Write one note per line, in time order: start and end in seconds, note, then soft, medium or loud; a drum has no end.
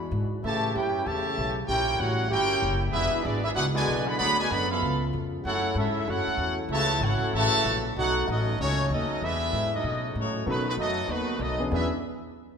0.00 0.11 E2 loud
0.00 0.42 E3 medium
0.00 0.42 G#3 medium
0.00 0.42 D4 medium
0.00 0.41 F#4 medium
0.11 0.42 G#2 loud
0.43 0.74 A2 medium
0.43 2.92 C#3 medium
0.43 0.73 C#3 loud
0.43 0.73 E3 medium
0.43 0.73 A3 medium
0.43 1.68 A3 medium
0.43 1.68 B3 medium
0.43 1.68 G4 medium
0.43 0.74 G4 loud
0.43 0.74 C#5 medium
0.43 0.73 E5 medium
0.43 0.73 A5 loud
0.75 1.05 F#2 loud
0.75 1.04 C#4 medium
0.75 1.04 E4 medium
0.75 1.05 E4 medium
0.75 1.04 G4 medium
0.75 1.05 B4 medium
0.75 1.04 C#5 medium
0.75 1.04 G5 medium
1.06 1.37 E2 loud
1.06 1.57 C#3 medium
1.06 1.57 E3 medium
1.06 1.57 A3 medium
1.06 1.57 G4 loud
1.06 1.57 C#5 loud
1.06 1.57 E5 loud
1.06 1.57 A5 loud
1.38 1.68 B1 loud
1.67 1.99 A#1 medium
1.67 2.93 G3 medium
1.67 2.93 A#3 medium
1.67 1.97 C#4 medium
1.67 1.97 E4 medium
1.67 4.17 E4 medium
1.67 1.97 G4 loud
1.67 1.98 A#4 loud
1.67 1.97 C#5 medium
1.67 1.97 G5 loud
1.97 2.30 A1 loud
1.97 2.30 G3 medium
1.97 2.28 C#4 medium
1.97 2.30 E4 medium
1.97 2.30 F#4 medium
1.97 2.29 A#4 medium
1.97 2.30 C#5 medium
1.97 2.31 F#5 loud
2.30 2.62 G1 medium
2.30 2.78 C#4 medium
2.30 2.78 E4 medium
2.30 2.79 E4 loud
2.30 2.78 G4 loud
2.30 2.79 A#4 loud
2.30 2.79 C#5 medium
2.30 2.79 G5 loud
2.62 2.93 F#1 medium
2.91 3.12 E1 medium
2.91 4.17 F#3 medium
2.91 3.21 G#3 medium
2.91 4.17 G#3 medium
2.91 3.21 B3 loud
2.91 3.22 D4 medium
2.91 4.79 D4 medium
2.91 3.22 E4 loud
2.91 3.22 G#4 loud
2.91 3.22 B4 loud
2.91 3.22 E5 loud
3.14 muted upright bass stroke soft
3.23 3.55 G#1 loud
3.23 3.41 G#3 medium
3.23 3.42 B3 medium
3.23 3.45 B3 medium
3.23 3.44 D4 medium
3.23 3.45 F#4 medium
3.23 3.43 G#4 medium
3.23 3.45 D5 medium
3.43 3.48 G#3 medium
3.43 3.49 B3 medium
3.43 3.50 D4 medium
3.43 3.49 E4 medium
3.43 3.50 G#4 medium
3.43 3.50 B4 medium
3.43 3.50 E5 loud
3.55 3.87 C#2 medium
3.55 3.64 B3 loud
3.55 3.64 D4 medium
3.55 3.65 D4 loud
3.55 3.64 F#4 medium
3.55 3.65 G#4 loud
3.55 3.65 B4 loud
3.55 3.65 F#5 loud
3.74 4.04 B2 loud
3.74 4.04 D3 loud
3.74 4.04 G#3 loud
3.74 4.05 F#4 medium
3.74 4.05 B4 loud
3.74 4.05 D5 loud
3.74 4.06 G#5 loud
3.88 4.18 B1 loud
4.06 4.18 D3 loud
4.06 4.18 G#3 loud
4.06 4.18 B3 loud
4.06 4.18 G#4 medium
4.06 4.17 D5 medium
4.06 4.17 F#5 medium
4.06 4.17 B5 loud
4.17 4.50 D2 medium
4.17 4.37 D3 loud
4.17 4.37 F#3 loud
4.17 4.80 G#3 medium
4.17 4.80 B3 medium
4.17 4.38 B3 loud
4.17 4.81 F#4 medium
4.17 4.38 G#4 loud
4.17 4.37 D5 loud
4.17 4.37 F#5 loud
4.17 4.37 B5 loud
4.39 4.50 B2 loud
4.39 4.48 D3 medium
4.39 4.50 G#3 loud
4.39 4.50 F#4 medium
4.39 4.50 B4 medium
4.39 4.50 D5 medium
4.39 4.50 G#5 loud
4.49 4.81 F#2 loud
4.49 4.70 D3 medium
4.49 4.70 F#3 loud
4.49 4.69 B3 loud
4.49 4.71 G#4 medium
4.49 4.71 D5 medium
4.49 4.71 F#5 medium
4.49 4.70 B5 loud
4.70 5.02 B2 medium
4.70 5.02 F3 medium
4.70 5.02 B3 medium
4.70 5.03 A4 medium
4.70 5.03 E5 medium
4.70 5.03 F5 medium
4.70 5.03 B5 medium
4.81 5.12 C#2 loud
4.81 9.16 C#3 medium
4.81 5.44 A3 medium
4.81 5.44 B3 medium
4.81 5.44 F4 medium
5.13 5.44 F2 loud
5.44 5.75 F#2 loud
5.44 7.92 F#3 medium
5.44 5.74 A3 loud
5.44 5.74 C#4 loud
5.44 7.93 E4 medium
5.44 5.74 E4 medium
5.44 5.75 F#4 medium
5.44 9.16 A4 medium
5.44 5.74 A4 loud
5.44 5.74 C#5 loud
5.44 5.74 F#5 loud
5.75 6.06 G#2 loud
5.75 6.05 C#4 medium
5.75 6.06 C#4 medium
5.75 6.06 E4 loud
5.75 6.06 F#4 medium
5.75 6.05 A4 medium
5.75 6.06 A4 medium
5.75 6.06 E5 medium
6.08 6.26 F#2 medium
6.08 6.59 A3 medium
6.08 6.59 C#4 medium
6.08 6.59 E4 loud
6.08 6.59 F#4 medium
6.08 6.60 A4 loud
6.08 6.59 C#5 loud
6.08 6.59 F#5 loud
6.27 muted upright bass stroke soft
6.37 6.68 E2 loud
6.69 7.00 C#2 loud
6.69 7.00 C#3 loud
6.69 7.00 E3 loud
6.69 6.99 A3 loud
6.69 7.00 F#4 loud
6.69 7.00 C#5 loud
6.69 7.00 E5 loud
6.69 7.00 A5 loud
7.01 7.20 G#1 loud
7.01 7.34 A3 medium
7.01 7.34 C#4 medium
7.01 7.34 E4 medium
7.01 7.34 F#4 medium
7.01 7.34 A4 medium
7.01 7.33 C#5 medium
7.01 7.33 F#5 loud
7.21 muted upright bass stroke soft
7.33 7.51 A1 medium
7.33 7.82 C#3 loud
7.33 7.81 E3 loud
7.33 7.82 A3 loud
7.33 7.82 F#4 loud
7.33 7.82 C#5 loud
7.33 7.82 E5 loud
7.33 7.81 A5 loud
7.53 muted upright bass stroke soft
7.64 7.94 A#1 loud
7.94 8.26 B1 medium
7.94 9.19 B3 medium
7.94 9.19 D#4 medium
7.94 8.26 D#4 medium
7.94 8.26 F#4 loud
7.94 8.26 A4 medium
7.94 8.26 C#5 loud
7.98 8.26 A3 loud
7.98 8.26 D#4 medium
7.98 8.26 F#5 loud
8.28 8.58 A1 loud
8.28 8.58 F#3 medium
8.28 8.59 A3 medium
8.28 8.60 C#4 medium
8.28 8.59 D#4 medium
8.28 8.60 F#4 medium
8.28 8.60 A4 medium
8.28 8.60 D#5 medium
8.59 8.89 C#2 medium
8.59 8.88 F#3 medium
8.59 8.88 A3 medium
8.59 8.89 A3 medium
8.59 8.88 C#4 medium
8.59 8.89 D#4 medium
8.59 8.89 F#4 medium
8.59 8.89 C#5 loud
8.90 9.08 D#2 loud
8.90 9.21 F#3 medium
8.90 9.21 A3 medium
8.90 9.22 C#4 medium
8.90 9.21 D#4 medium
8.90 9.22 F#4 medium
8.90 9.22 A4 medium
8.90 9.22 D#5 loud
9.21 9.51 E2 medium
9.21 9.83 D3 medium
9.21 9.83 F#3 medium
9.21 9.83 G#3 medium
9.21 9.73 G#3 medium
9.21 9.73 B3 medium
9.21 9.73 D4 medium
9.21 9.83 E4 medium
9.21 9.73 E4 medium
9.21 9.73 G#4 medium
9.21 9.73 B4 loud
9.21 9.73 E5 loud
9.53 9.82 G#2 loud
9.74 10.17 F#3 medium
9.74 10.17 A3 medium
9.74 10.31 C#4 medium
9.74 10.31 D#4 medium
9.74 10.18 F#4 medium
9.74 10.31 A4 medium
9.74 10.31 D#5 medium
9.84 10.14 B2 medium
9.84 10.45 C#3 medium
9.84 10.45 A3 medium
9.84 10.45 B3 medium
9.84 10.46 D#4 medium
10.15 10.45 A2 loud
10.15 10.45 F#3 medium
10.15 10.46 A3 medium
10.15 10.45 C#4 medium
10.15 10.46 D#4 medium
10.19 10.46 F#4 medium
10.19 10.46 C#5 medium
10.46 10.76 B2 medium
10.46 10.65 D#3 medium
10.46 10.64 F#3 medium
10.46 10.65 F#3 medium
10.46 10.66 A3 medium
10.46 10.64 B3 medium
10.46 10.65 B3 medium
10.46 10.64 C#4 medium
10.46 10.64 D#4 medium
10.46 10.65 D#4 medium
10.46 10.66 F#4 medium
10.46 10.64 A4 medium
10.46 10.66 B4 medium
10.68 10.73 D#3 medium
10.68 10.72 F#3 medium
10.68 10.73 A3 medium
10.68 10.73 B3 medium
10.68 10.73 D#4 medium
10.68 10.73 F#4 medium
10.68 10.73 B4 medium
10.77 11.07 F#2 medium
10.77 11.06 F#3 loud
10.77 11.06 A3 loud
10.77 11.08 B3 medium
10.77 11.06 D#4 loud
10.77 11.08 F#4 medium
10.77 11.08 A4 medium
10.77 11.08 D#5 loud
11.08 11.38 D#2 medium
11.08 11.40 D#3 medium
11.08 11.39 F#3 medium
11.08 11.40 A3 loud
11.08 11.39 B3 medium
11.08 11.40 D#4 medium
11.08 11.40 F#4 medium
11.08 11.40 B4 loud
11.39 11.69 B1 loud
11.39 11.65 F#3 medium
11.39 11.65 A3 medium
11.39 11.66 B3 medium
11.39 11.65 D#4 medium
11.39 11.66 F#4 medium
11.39 11.66 A4 medium
11.39 11.66 D#5 loud
11.59 11.69 E2 medium
11.59 11.69 F#3 medium
11.59 11.69 B3 medium
11.59 11.69 C#4 medium
11.59 11.70 D4 medium
11.59 11.70 G#4 medium
11.70 11.90 E2 loud
11.70 11.89 E3 loud
11.70 11.88 F#3 medium
11.70 11.89 B3 loud
11.70 11.89 B3 medium
11.70 11.89 C#4 medium
11.70 11.89 D4 medium
11.70 11.90 D4 medium
11.70 11.89 G#4 medium
11.70 11.90 G#4 medium
11.70 11.91 B4 medium
11.70 11.91 E5 loud